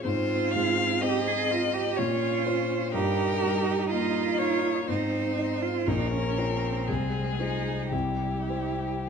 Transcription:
0.04 grand piano G#2, viola C4, cello F4, violin C5
0.51 violin F5
0.55 grand piano G#3
1.01 grand piano C4, cello G4, violin D#5
1.27 cello G#4
1.51 cello F4, grand piano F4
1.74 cello G4
1.96 grand piano A#2, viola C#4, cello F4, violin C#5
2.44 grand piano F4 C#5, violin C5
2.92 grand piano G2, viola D#4, cello G4, violin A#4
3.43 grand piano G3
3.89 grand piano A#3, cello F4, violin D#5
4.38 grand piano D#4, violin C#5
4.87 grand piano G#2, viola C4, cello D#4, violin C5
5.38 grand piano D#4 D#5
5.62 cello F4
5.86 grand piano A#1, viola C#4, cello D#4, violin A#4
6.13 cello C#4
6.37 cello C4, grand piano F4 C#5
6.88 grand piano C2, viola G#3, violin G#4
7.39 cello D#4, grand piano F4 C5
7.90 grand piano C2, viola G3, cello E4, violin G4
8.49 grand piano G4 C5

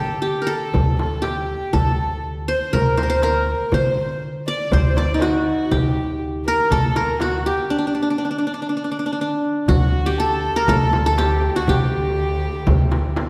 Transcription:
Already playing: upright bass D3, qanun G4 A4, violin G4
0.00 darbuka ka
0.22 qanun G4, violin G4
0.37 darbuka ka
0.42 qanun A#4
0.47 qanun A4, violin A4
0.74 upright bass D2, frame drum, darbuka dum
0.99 violin A4, darbuka tek, frame drum
1.22 qanun G4, violin G4, darbuka tek, frame drum
1.48 darbuka ka
1.73 upright bass D2, qanun A4, violin A4, frame drum, darbuka dum
1.99 darbuka ka
2.48 qanun C5, violin C5
2.73 upright bass D2, qanun A#4, violin A#4, darbuka dum, frame drum
2.97 qanun C5, violin C5, darbuka tek, frame drum
3.03 qanun A#4
3.10 qanun C5, violin C5
3.22 qanun A#4, violin A#4, darbuka tek, frame drum
3.72 upright bass D3, violin C5, qanun C5, darbuka dum, frame drum
3.97 violin C5, darbuka ka
4.47 violin D5, qanun D5
4.71 upright bass D2, violin C5, qanun C5, darbuka dum, frame drum
4.96 violin D5, qanun D5, darbuka tek, frame drum
5.14 qanun D#4
5.21 violin F#4, qanun F#4, darbuka tek, frame drum
5.46 violin F#4, darbuka ka
5.71 upright bass D2, qanun G4, violin G4, darbuka dum, frame drum
5.97 darbuka ka
6.45 violin A#4, qanun A#4
6.71 upright bass D2, violin A4, qanun A4, darbuka dum, frame drum
6.95 violin A#4, qanun A#4, darbuka tek, frame drum
7.20 violin F#4, qanun F#4, darbuka tek, frame drum
7.46 violin G4, qanun G4, darbuka ka
7.70 qanun D4
7.78 qanun D4
7.87 qanun D4
7.95 qanun D4
8.02 qanun D4
8.10 qanun D4
8.18 qanun D4
8.25 qanun D4
8.31 qanun D4
8.38 qanun D4
8.47 qanun D4
8.54 qanun D4
8.62 qanun D4
8.69 qanun D4
8.77 qanun D4
8.84 qanun D4
8.92 qanun D4
8.99 qanun D4
9.06 qanun D4
9.13 qanun D4
9.21 qanun D4
9.68 upright bass D2, cello section D2, qanun F#4, violin F#4, darbuka dum, frame drum
9.93 darbuka ka
10.06 qanun G4
10.18 violin A4, qanun A4
10.31 darbuka ka
10.56 qanun A#4
10.68 upright bass D2, qanun A4, violin A4, darbuka dum, frame drum
10.93 darbuka tek, frame drum
11.06 violin A4, qanun A4
11.18 qanun G4, violin G4, darbuka tek, frame drum
11.56 violin F#4, qanun F#4
11.68 upright bass D2, violin G4, qanun G4, frame drum, darbuka dum
11.92 darbuka ka
12.30 darbuka ka
12.67 upright bass D2, darbuka dum, frame drum
12.91 darbuka tek, frame drum
13.16 darbuka tek, frame drum

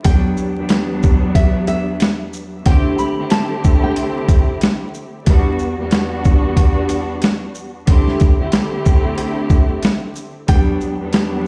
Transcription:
0.04 string section E2 F#3 G3 B3 D4, nylon-string guitar G5, kick, closed hi-hat
0.37 shaker
0.57 string section E2 F#3 G3 B3 D4
0.69 snare, closed hi-hat
1.03 kick, shaker
1.35 nylon-string guitar E5, kick, closed hi-hat
1.67 nylon-string guitar E5, closed hi-hat, shaker
2.00 snare, closed hi-hat
2.33 shaker
2.65 string section D3 A3 C4 E4 G4, nylon-string guitar G5, kick, closed hi-hat
2.98 nylon-string guitar B5, shaker
3.17 string section D3 A3 C4 E4 G4
3.30 nylon-string guitar A5, snare, closed hi-hat
3.64 kick, shaker
3.83 nylon-string guitar G5
3.96 closed hi-hat
4.29 kick, closed hi-hat, shaker
4.61 snare, closed hi-hat
4.94 shaker
5.25 string section E2 G3 B3 D4 F#4, kick, closed hi-hat
5.59 shaker
5.78 string section E2 G3 B3 D4 F#4
5.91 snare, closed hi-hat
6.24 kick, shaker
6.57 kick, closed hi-hat
6.89 closed hi-hat, shaker
7.22 snare, closed hi-hat
7.55 shaker
7.86 string section D3 A3 C4 E4 G4, kick, closed hi-hat
8.08 snare
8.20 kick, closed hi-hat, shaker
8.38 string section D3 A3 C4 E4 G4
8.52 snare, closed hi-hat
8.85 kick, shaker
9.18 closed hi-hat
9.50 kick, shaker
9.83 snare, closed hi-hat
10.16 shaker
10.47 string section E2 F#3 G3 B3 D4, nylon-string guitar G5, kick, closed hi-hat
10.81 shaker
11.00 string section E2 F#3 G3 B3 D4
11.13 snare, closed hi-hat

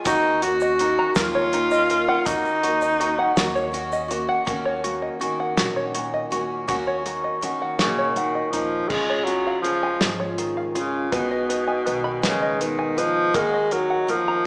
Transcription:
0.04 upright bass D#2, twelve-string acoustic guitar D#3 A#3 C#4 F#4, tenor saxophone D#4, five-string banjo F#4, kick, closed hi-hat, shaker
0.42 twelve-string acoustic guitar A#3 C#4 F#4, tenor saxophone F#4, five-string banjo F#4, closed hi-hat, shaker
0.60 five-string banjo D#5, shaker
0.79 twelve-string acoustic guitar D#3 A#3 C#4 F#4, five-string banjo D#4, closed hi-hat
0.99 five-string banjo A#5
1.15 upright bass D#2, twelve-string acoustic guitar D#3 A#3 C#4, tenor saxophone F4, five-string banjo A#4, kick, snare, closed hi-hat, shaker
1.35 five-string banjo C#5
1.52 twelve-string acoustic guitar D#3 A#3 C#4, five-string banjo D#4, closed hi-hat
1.71 five-string banjo D#5, shaker
1.90 twelve-string acoustic guitar A#3 C#4, five-string banjo A#4, closed hi-hat
2.08 five-string banjo F#5
2.25 upright bass D#2, twelve-string acoustic guitar D#3 A#3 C#4 F#4, tenor saxophone D#4, five-string banjo F#4, kick, closed hi-hat, shaker
2.45 shaker
2.63 twelve-string acoustic guitar A#3 C#4 F#4, five-string banjo F#4, closed hi-hat
2.81 five-string banjo D#5, shaker
2.99 twelve-string acoustic guitar D#3 A#3 C#4 F#4, five-string banjo F#4, closed hi-hat
3.19 five-string banjo F#5
3.36 upright bass D#2, twelve-string acoustic guitar D#3 A#3 C#4 F#4, five-string banjo F#4, kick, snare, closed hi-hat, shaker
3.55 five-string banjo C#5, shaker
3.72 twelve-string acoustic guitar D#3 A#3 C#4 F#4, five-string banjo F#4, closed hi-hat
3.92 five-string banjo D#5, shaker
4.08 twelve-string acoustic guitar A#3 C#4 F#4, five-string banjo F#4, closed hi-hat
4.29 five-string banjo F#5
4.45 upright bass D#2, steel-string acoustic guitar D#2, twelve-string acoustic guitar D#3 A#3 C#4 F#4, five-string banjo F#4, kick, closed hi-hat
4.65 five-string banjo C#5
4.84 steel-string acoustic guitar A#3, five-string banjo F#4, closed hi-hat
5.02 five-string banjo D#5
5.19 twelve-string acoustic guitar D#3 A#3 C#4 F#4, upright bass D#3, five-string banjo F#4, closed hi-hat
5.40 five-string banjo F#5
5.57 upright bass A#1, twelve-string acoustic guitar D#3 A#3 C#4 F#4, five-string banjo F#4, snare, closed hi-hat
5.76 five-string banjo C#5
5.94 steel-string acoustic guitar A#2, five-string banjo F#4, closed hi-hat
6.14 five-string banjo D#5
6.30 upright bass D#2, twelve-string acoustic guitar A#3 C#4 F#4, five-string banjo F#4, closed hi-hat
6.67 steel-string acoustic guitar D#2, upright bass D#2, twelve-string acoustic guitar D#3 A#3 C#4 F#4, five-string banjo F#4, kick, closed hi-hat
6.87 five-string banjo C#5
7.06 steel-string acoustic guitar A#3, five-string banjo F#4, closed hi-hat
7.24 five-string banjo D#5
7.41 twelve-string acoustic guitar D#3 A#3 C#4 F#4, upright bass D#3, five-string banjo F#4, closed hi-hat
7.62 five-string banjo F#5
7.79 upright bass A#1, tenor saxophone C#3, twelve-string acoustic guitar D#3 A#3 C#4 F#4, five-string banjo F#4, snare, closed hi-hat
7.98 five-string banjo C#5
8.15 steel-string acoustic guitar A#2, tenor saxophone D#3, five-string banjo F#5, closed hi-hat
8.35 five-string banjo D#5
8.51 upright bass D#2, tenor saxophone F3, twelve-string acoustic guitar C#4, five-string banjo D#4, closed hi-hat
8.55 twelve-string acoustic guitar A#3
8.88 upright bass C#2, twelve-string acoustic guitar C#3 G#3 C#4 F4, tenor saxophone G#3, five-string banjo G#4, kick, crash
9.10 five-string banjo C#5
9.25 tenor saxophone F#3, steel-string acoustic guitar C#4, five-string banjo G#4, closed hi-hat
9.47 five-string banjo F5
9.62 upright bass C#2, tenor saxophone F3, twelve-string acoustic guitar F3 G#3 C#4, five-string banjo G#4, closed hi-hat
9.66 twelve-string acoustic guitar F4
9.83 five-string banjo G#5
10.01 upright bass G#1, twelve-string acoustic guitar C#3 F3 G#3 C#4 F4, five-string banjo G#4, snare, closed hi-hat
10.20 five-string banjo C#5
10.38 steel-string acoustic guitar D#3, five-string banjo G#4, closed hi-hat
10.57 five-string banjo F5
10.75 steel-string acoustic guitar C#3, tenor saxophone C#3, twelve-string acoustic guitar G#3 C#4 F4, five-string banjo G#4, closed hi-hat
11.12 upright bass B1, twelve-string acoustic guitar B2 D#3 G#3 D#4 G#4, tenor saxophone B2, five-string banjo B4, kick, closed hi-hat
11.31 five-string banjo D#5
11.49 steel-string acoustic guitar D#4, five-string banjo B4, closed hi-hat
11.68 five-string banjo G#5
11.86 upright bass B1, twelve-string acoustic guitar D#3 G#3 D#4 G#4, five-string banjo B4, closed hi-hat
12.04 five-string banjo B5
12.22 upright bass D#2, twelve-string acoustic guitar B2 D#3 G#3 D#4 G#4, tenor saxophone C#3, five-string banjo B4, snare, closed hi-hat
12.42 five-string banjo D#5
12.61 steel-string acoustic guitar B2, tenor saxophone D#3, five-string banjo B4, closed hi-hat
12.79 five-string banjo G#5
12.97 tenor saxophone F3, twelve-string acoustic guitar G#3 D#4 G#4, five-string banjo B4, closed hi-hat
13.33 upright bass D#2, steel-string acoustic guitar D#2, twelve-string acoustic guitar D#3 A#3 D#4 F#4, tenor saxophone G#3, five-string banjo A#4, kick, closed hi-hat
13.54 five-string banjo D#5
13.71 tenor saxophone F#3, steel-string acoustic guitar D#4, five-string banjo A#4, closed hi-hat
13.90 five-string banjo F#5
14.07 upright bass D#2, twelve-string acoustic guitar D#3 A#3 D#4, tenor saxophone F3, five-string banjo A#4, closed hi-hat
14.28 five-string banjo A#5

